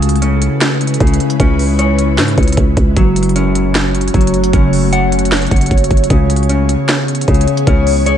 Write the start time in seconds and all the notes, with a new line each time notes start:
Already playing: C#2 C#3 G#3 E4 B4
0.02 closed hi-hat
0.09 closed hi-hat
0.16 closed hi-hat
0.22 C#4, closed hi-hat
0.42 closed hi-hat
0.61 snare, clap, closed hi-hat
0.81 closed hi-hat
0.87 closed hi-hat
0.94 closed hi-hat
1.00 C#2 C#3, kick, closed hi-hat
1.07 closed hi-hat
1.14 closed hi-hat
1.20 closed hi-hat
1.30 closed hi-hat
1.40 C#2 C#4, kick, closed hi-hat
1.59 open hi-hat
1.79 C#5, closed hi-hat
1.99 closed hi-hat
2.18 G#2, snare, clap, closed hi-hat
2.28 closed hi-hat
2.38 C#2, kick, closed hi-hat
2.43 closed hi-hat
2.48 closed hi-hat
2.52 closed hi-hat
2.57 C#2, kick, closed hi-hat
2.77 C#2, kick, closed hi-hat
2.97 F#1 C#3 F#3 A3 F#4 C#5, kick, closed hi-hat
3.16 closed hi-hat
3.23 closed hi-hat
3.29 closed hi-hat
3.36 C#4, closed hi-hat
3.55 closed hi-hat
3.75 snare, clap, closed hi-hat
3.95 closed hi-hat
4.01 closed hi-hat
4.08 closed hi-hat
4.14 F#1 F#3, kick, closed hi-hat
4.21 closed hi-hat
4.27 closed hi-hat
4.34 closed hi-hat
4.44 closed hi-hat
4.53 F#1 C#4, kick, closed hi-hat
4.73 open hi-hat
4.93 F#5, closed hi-hat
5.12 closed hi-hat
5.19 closed hi-hat
5.25 closed hi-hat
5.32 snare, clap, closed hi-hat
5.37 closed hi-hat
5.42 closed hi-hat
5.47 closed hi-hat
5.51 F#1, kick, closed hi-hat
5.56 closed hi-hat
5.61 closed hi-hat
5.66 closed hi-hat
5.71 F#1, kick, closed hi-hat
5.78 closed hi-hat
5.84 closed hi-hat
5.91 F#1, kick, closed hi-hat
5.97 closed hi-hat
6.04 closed hi-hat
6.10 C#2 C#3 E3 B3 G#4 C#5, kick, closed hi-hat
6.30 closed hi-hat
6.36 closed hi-hat
6.43 closed hi-hat
6.49 C#4, closed hi-hat
6.69 closed hi-hat
6.89 snare, clap, closed hi-hat
7.08 closed hi-hat
7.15 closed hi-hat
7.21 closed hi-hat
7.28 C#2 C#3, kick, closed hi-hat
7.34 closed hi-hat
7.41 closed hi-hat
7.47 closed hi-hat
7.57 closed hi-hat
7.67 C#2 C#4, kick, closed hi-hat
7.87 open hi-hat
8.06 C#5, closed hi-hat